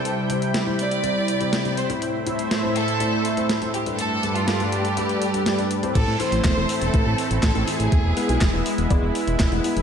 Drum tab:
CC |----------------|----------------|----------------|x---------------|
HH |x-xxx-xxx-xxxxxx|x-xxx-xxx-xxxxxx|x-xxxxxxxxxxxxxx|x-oxx-oxx-oxxxox|
CP |----------------|----------------|----------------|----x-------x---|
SD |----o-------o---|----o-------o---|----o-------o---|----o-------o---|
BD |----------------|----------------|----------------|o---o---o---o---|

CC |----------------|
HH |x-oxx-oxx-oxxxox|
CP |----x-------x---|
SD |----o-------o---|
BD |o---o---o---o---|